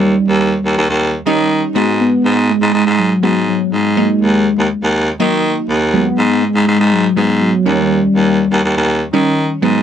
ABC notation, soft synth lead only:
X:1
M:4/4
L:1/8
Q:1/4=122
K:D#phr
V:1 name="Soft synth lead" clef=bass
=G,4- G, z3 | B,2 G,2 F,2 F, G,- | G,4- G, z3 | B,2 G,2 F,2 F, =G,- |
=G,4- G, z3 |]